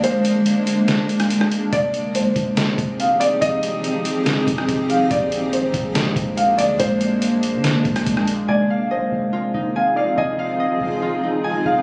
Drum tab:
HH |x-x-x-x-x-xxx-x-|x-x-x-x-x-x-x-x-|x-x-x-x-x-x-x-x-|x-x-x-x-x-x-x-x-|
SD |--------o--r-r--|--------o-------|--------o--r----|--------o-------|
BD |----------------|o-----o---o-----|----------o-o---|o-----o---o-----|

HH |x-x-x-x-x-xxx-x-|----------------|----------------|
SD |--------o--r-r--|----------------|----------------|
BD |----------o-o---|----------------|----------------|